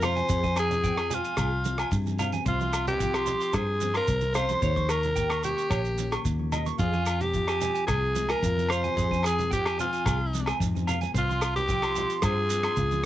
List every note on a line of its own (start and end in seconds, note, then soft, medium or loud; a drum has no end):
0.00 0.21 F2 medium
0.00 0.29 F2 medium
0.00 0.27 C3 medium
0.00 0.84 F3 medium
0.00 1.66 G#3 medium
0.00 1.92 F4 medium
0.00 0.57 C5 medium
0.00 0.12 F5 medium
0.00 cross-stick medium
0.00 closed hi-hat soft
0.00 low conga medium
0.00 low agogo medium
0.00 shekere medium
0.05 0.30 C4 soft
0.16 0.25 G#5 medium
0.16 closed hi-hat soft
0.16 high conga medium
0.16 shekere soft
0.29 1.20 F2 loud
0.29 2.47 F2 medium
0.29 0.85 C4 medium
0.29 0.39 G#4 medium
0.29 kick medium
0.29 closed hi-hat soft
0.29 shekere medium
0.44 0.53 G#5 medium
0.44 kick medium
0.44 high conga medium
0.44 shekere soft
0.56 1.16 G#4 loud
0.56 0.66 G#5 medium
0.56 cross-stick medium
0.56 closed hi-hat soft
0.56 low agogo medium
0.56 shekere medium
0.71 closed hi-hat soft
0.71 low conga medium
0.71 shekere soft
0.84 2.44 F3 medium
0.84 1.12 C4 medium
0.84 0.93 G5 medium
0.84 kick medium
0.84 closed hi-hat soft
0.84 shekere medium
0.97 1.06 G#5 medium
0.97 cross-stick medium
0.97 low agogo medium
0.97 shekere soft
1.10 2.20 C4 medium
1.10 1.20 G#5 medium
1.10 closed hi-hat soft
1.10 low conga medium
1.10 shekere medium
1.14 1.94 F4 medium
1.24 1.34 G#5 medium
1.24 closed hi-hat soft
1.24 shekere soft
1.37 1.83 C2 medium
1.37 1.47 G#4 medium
1.37 kick medium
1.37 cross-stick medium
1.37 closed hi-hat medium
1.37 low agogo medium
1.37 shekere medium
1.64 2.43 C3 medium
1.64 closed hi-hat soft
1.64 high conga medium
1.64 shekere medium
1.78 1.88 G#5 medium
1.78 cross-stick medium
1.78 closed hi-hat soft
1.78 low agogo medium
1.78 shekere soft
1.91 2.37 G2 medium
1.91 2.44 G#4 medium
1.91 kick medium
1.91 closed hi-hat soft
1.91 shekere medium
2.07 high conga medium
2.07 shekere soft
2.18 2.47 C4 soft
2.18 2.29 F5 medium
2.18 closed hi-hat medium
2.18 low conga medium
2.18 low agogo medium
2.18 shekere medium
2.32 2.42 G#5 medium
2.32 closed hi-hat medium
2.32 high conga medium
2.32 shekere soft
2.46 3.36 C2 medium
2.46 3.01 C3 medium
2.46 3.82 C4 medium
2.46 2.86 F4 medium
2.46 2.55 C5 medium
2.46 kick medium
2.46 closed hi-hat medium
2.46 shekere medium
2.60 2.69 C6 medium
2.60 high conga medium
2.60 shekere soft
2.73 2.82 C6 medium
2.73 cross-stick medium
2.73 closed hi-hat medium
2.73 low agogo medium
2.73 shekere medium
2.87 3.56 G4 loud
2.87 closed hi-hat medium
2.87 low conga medium
2.87 shekere soft
2.99 4.61 F3 medium
2.99 3.27 F4 medium
2.99 3.09 G5 medium
2.99 kick medium
2.99 closed hi-hat medium
2.99 shekere medium
3.14 3.23 C6 medium
3.14 cross-stick medium
3.14 low agogo medium
3.14 shekere soft
3.26 4.64 F4 medium
3.26 3.36 C6 medium
3.26 closed hi-hat soft
3.26 low conga medium
3.26 shekere medium
3.40 3.50 C6 medium
3.40 closed hi-hat medium
3.40 shekere soft
3.53 4.00 G2 medium
3.53 3.96 G#4 medium
3.53 3.63 C5 medium
3.53 kick medium
3.53 cross-stick medium
3.53 closed hi-hat medium
3.53 low agogo medium
3.53 shekere medium
3.80 4.60 G2 medium
3.80 4.61 C4 medium
3.80 closed hi-hat medium
3.80 high conga medium
3.80 shekere medium
3.94 4.34 A#4 loud
3.94 4.03 C6 medium
3.94 cross-stick medium
3.94 closed hi-hat soft
3.94 low agogo medium
3.94 shekere soft
4.07 4.54 C2 medium
4.07 4.36 C3 medium
4.07 kick medium
4.07 closed hi-hat soft
4.07 shekere medium
4.21 high conga medium
4.21 shekere soft
4.34 4.63 C#3 medium
4.34 4.92 C5 loud
4.34 4.45 F5 medium
4.34 cross-stick medium
4.34 closed hi-hat medium
4.34 low conga medium
4.34 low agogo medium
4.34 shekere medium
4.49 4.58 C6 loud
4.49 closed hi-hat soft
4.49 high conga medium
4.49 shekere soft
4.62 5.53 D#2 medium
4.62 6.80 D#3 medium
4.62 5.18 G4 medium
4.62 4.72 C#5 medium
4.62 kick medium
4.62 closed hi-hat soft
4.62 shekere medium
4.76 4.86 C#6 medium
4.76 kick medium
4.76 high conga medium
4.76 shekere soft
4.89 5.44 A#4 loud
4.89 4.99 C#6 medium
4.89 cross-stick medium
4.89 closed hi-hat soft
4.89 low agogo medium
4.89 shekere medium
5.03 closed hi-hat soft
5.03 low conga medium
5.03 shekere soft
5.16 6.77 A#3 medium
5.16 6.27 G4 medium
5.16 5.26 G5 medium
5.16 kick medium
5.16 closed hi-hat soft
5.16 shekere medium
5.30 5.39 C#6 medium
5.30 cross-stick medium
5.30 low agogo medium
5.30 shekere soft
5.43 5.98 C#4 medium
5.43 6.22 G4 medium
5.43 5.53 C#6 medium
5.43 closed hi-hat soft
5.43 low conga medium
5.43 shekere medium
5.57 5.66 C#6 medium
5.57 closed hi-hat soft
5.57 shekere soft
5.70 6.16 A#1 medium
5.70 5.80 C#5 medium
5.70 kick medium
5.70 cross-stick medium
5.70 closed hi-hat soft
5.70 low agogo medium
5.70 shekere medium
5.85 shekere soft
5.98 6.80 A#2 medium
5.98 6.77 C#4 medium
5.98 closed hi-hat soft
5.98 high conga medium
5.98 shekere medium
6.12 6.21 C#6 medium
6.12 cross-stick medium
6.12 closed hi-hat soft
6.12 low agogo medium
6.12 shekere soft
6.25 6.71 D#2 loud
6.25 6.54 G4 medium
6.25 kick medium
6.25 closed hi-hat soft
6.25 shekere medium
6.40 high conga medium
6.52 6.83 G4 soft
6.52 6.62 D#5 medium
6.52 closed hi-hat soft
6.52 low conga medium
6.52 low agogo medium
6.52 shekere medium
6.66 6.75 C#6 medium
6.66 closed hi-hat soft
6.66 high conga medium
6.66 shekere soft
6.79 7.70 F2 medium
6.79 8.96 F2 medium
6.79 7.62 C4 medium
6.79 7.23 F4 medium
6.79 6.90 G#4 medium
6.79 kick medium
6.79 closed hi-hat soft
6.79 shekere medium
6.93 7.02 G#5 medium
6.93 high conga medium
6.93 shekere soft
7.06 7.17 G#5 medium
7.06 cross-stick medium
7.06 closed hi-hat soft
7.06 low agogo medium
7.06 shekere medium
7.21 7.86 G4 medium
7.21 closed hi-hat medium
7.21 low conga medium
7.21 shekere soft
7.34 9.52 F3 medium
7.34 8.44 F4 medium
7.34 kick medium
7.34 closed hi-hat soft
7.34 shekere medium
7.48 7.57 G#5 medium
7.48 cross-stick medium
7.48 low agogo medium
7.48 shekere soft
7.61 8.72 C4 soft
7.61 7.71 G#5 medium
7.61 closed hi-hat soft
7.61 low conga medium
7.61 shekere medium
7.74 7.84 G#5 medium
7.74 closed hi-hat soft
7.74 shekere soft
7.87 8.34 C2 medium
7.87 8.32 G#4 medium
7.87 7.97 G#4 medium
7.87 kick medium
7.87 cross-stick medium
7.87 closed hi-hat medium
7.87 low agogo medium
7.87 shekere medium
8.15 8.94 C3 medium
8.15 10.33 G#3 medium
8.15 closed hi-hat medium
8.15 high conga medium
8.15 shekere medium
8.29 8.72 A#4 medium
8.29 8.38 G#5 medium
8.29 cross-stick medium
8.29 closed hi-hat medium
8.29 low agogo medium
8.29 shekere soft
8.43 8.88 F2 medium
8.43 11.15 F4 medium
8.43 kick medium
8.43 closed hi-hat medium
8.43 shekere medium
8.58 high conga medium
8.58 shekere soft
8.69 9.24 C5 loud
8.69 8.79 F5 medium
8.69 cross-stick medium
8.69 closed hi-hat medium
8.69 low agogo medium
8.69 shekere medium
8.84 8.93 G#5 loud
8.84 closed hi-hat soft
8.84 high conga medium
8.97 9.87 F2 medium
8.97 10.60 F2 medium
8.97 9.53 C4 medium
8.97 9.06 G#4 medium
8.97 kick medium
8.97 closed hi-hat soft
8.97 shekere medium
9.11 9.20 G#5 medium
9.11 kick medium
9.11 high conga medium
9.11 shekere soft
9.23 9.51 G#4 medium
9.23 9.34 G#5 medium
9.23 cross-stick medium
9.23 closed hi-hat medium
9.23 low agogo medium
9.23 shekere medium
9.39 closed hi-hat medium
9.39 low conga medium
9.39 shekere soft
9.51 11.12 F3 medium
9.51 9.80 C4 medium
9.51 9.77 G4 medium
9.51 9.61 G5 medium
9.51 kick medium
9.51 closed hi-hat soft
9.51 shekere medium
9.66 9.75 G#5 medium
9.66 cross-stick medium
9.66 low agogo medium
9.66 shekere soft
9.79 11.15 C4 medium
9.79 10.57 F4 medium
9.79 9.88 G#5 medium
9.79 closed hi-hat soft
9.79 low conga medium
9.79 shekere medium
9.93 10.02 G#5 medium
9.93 closed hi-hat soft
9.93 shekere soft
10.06 10.51 C2 medium
10.06 10.16 G#4 medium
10.06 kick medium
10.06 cross-stick medium
10.06 closed hi-hat soft
10.06 low agogo medium
10.06 shekere loud
10.33 10.87 C3 medium
10.33 11.15 G#3 medium
10.33 closed hi-hat soft
10.33 high conga medium
10.33 shekere medium
10.46 10.56 G#5 medium
10.46 cross-stick medium
10.46 closed hi-hat soft
10.46 low agogo medium
10.46 shekere soft
10.60 11.05 F2 medium
10.60 10.88 G#2 medium
10.60 kick medium
10.60 closed hi-hat soft
10.60 shekere loud
10.76 high conga medium
10.76 shekere soft
10.87 11.15 A#2 soft
10.87 10.97 F5 medium
10.87 closed hi-hat soft
10.87 low conga medium
10.87 low agogo medium
10.87 shekere medium
11.01 11.10 G#5 medium
11.01 closed hi-hat soft
11.01 high conga medium
11.01 shekere soft
11.14 12.05 C2 loud
11.14 12.50 C4 medium
11.14 11.55 F4 medium
11.14 11.24 C5 medium
11.14 muted steel-string acoustic guitar stroke medium
11.14 kick medium
11.14 closed hi-hat soft
11.14 shekere medium
11.29 11.38 C6 medium
11.29 high conga medium
11.29 shekere soft
11.41 11.52 C6 medium
11.41 cross-stick medium
11.41 closed hi-hat soft
11.41 low agogo medium
11.41 shekere medium
11.56 12.19 G4 loud
11.56 closed hi-hat soft
11.56 low conga medium
11.56 shekere soft
11.68 13.06 F3 medium
11.68 11.95 F4 medium
11.68 11.78 G5 medium
11.68 kick medium
11.68 closed hi-hat medium
11.68 shekere medium
11.82 11.92 C6 medium
11.82 cross-stick medium
11.82 low agogo medium
11.82 shekere soft
11.95 12.77 F4 medium
11.95 12.06 C6 medium
11.95 closed hi-hat soft
11.95 low conga medium
11.95 shekere medium
12.10 12.20 C6 medium
12.10 closed hi-hat soft
12.10 shekere soft
12.22 12.68 G2 medium
12.22 13.02 G#4 loud
12.22 12.33 C5 medium
12.22 kick loud
12.22 cross-stick medium
12.22 closed hi-hat medium
12.22 low agogo medium
12.22 shekere loud
12.49 13.06 G2 medium
12.49 13.06 C4 medium
12.49 closed hi-hat medium
12.49 shekere medium
12.63 12.73 C6 medium
12.63 cross-stick medium
12.63 closed hi-hat soft
12.63 low agogo medium
12.76 13.06 C#2 medium
12.76 13.05 F4 medium
12.76 kick medium
12.76 closed hi-hat medium
12.76 shekere medium
12.91 high conga medium
12.91 shekere soft